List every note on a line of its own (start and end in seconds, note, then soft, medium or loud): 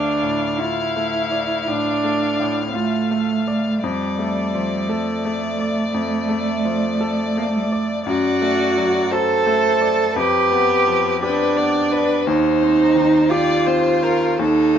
0.00 1.64 D2 soft
0.00 0.45 A3 soft
0.00 0.59 D4 medium
0.00 3.79 F5 soft
0.23 0.81 A2 soft
0.58 1.69 E4 medium
0.58 1.18 F4 soft
0.97 1.54 A3 soft
1.32 1.90 D5 soft
1.68 2.25 A2 soft
1.68 2.76 D4 medium
2.04 2.61 A3 soft
2.40 2.97 A2 soft
2.75 3.82 A3 medium
2.75 3.33 F4 soft
3.11 3.69 A3 soft
3.48 3.83 D5 soft
3.82 5.90 F2 medium
3.82 4.90 G3 medium
3.82 8.03 D5 medium
4.19 4.75 A3 soft
4.55 5.11 F3 soft
4.88 7.39 A3 medium
4.88 5.45 A4 soft
5.25 5.80 A3 soft
5.59 6.15 D5 soft
5.94 8.02 F2 soft
6.29 6.86 A3 soft
6.65 7.22 F3 soft
7.01 7.57 A4 medium
7.37 7.93 A3 soft
7.37 7.49 A#3 medium
7.48 7.58 A3 medium
7.56 7.66 G3 medium
7.65 7.72 A3 medium
7.72 8.06 D5 medium
8.05 10.11 F#2 medium
8.05 9.14 F#4 loud
8.05 9.12 D5 medium
8.42 8.98 A3 medium
8.77 9.33 F#3 soft
9.11 9.67 A4 medium
9.11 10.18 A4 loud
9.11 10.14 C5 medium
9.47 10.01 A3 medium
9.81 10.15 D5 soft
10.15 12.23 F2 medium
10.15 11.22 G4 loud
10.15 11.20 B4 medium
10.52 11.08 B3 medium
10.88 11.44 F3 medium
11.22 12.25 D4 medium
11.22 11.78 G4 medium
11.22 11.58 B4 medium
11.57 12.13 B3 medium
11.57 11.93 D5 medium
11.91 12.28 B4 medium
11.91 12.27 D5 medium
12.26 14.35 D#2 medium
12.26 13.32 D#4 loud
12.26 13.32 C5 medium
12.62 13.17 C4 soft
12.96 13.52 D#3 medium
13.30 14.40 F4 loud
13.30 13.88 G4 medium
13.30 13.68 D5 medium
13.66 14.25 C4 medium
13.66 14.04 C5 medium
14.03 14.39 A#4 medium
14.03 14.39 C5 medium
14.39 14.79 D#2 medium
14.39 14.79 D#4 loud
14.39 14.79 A4 medium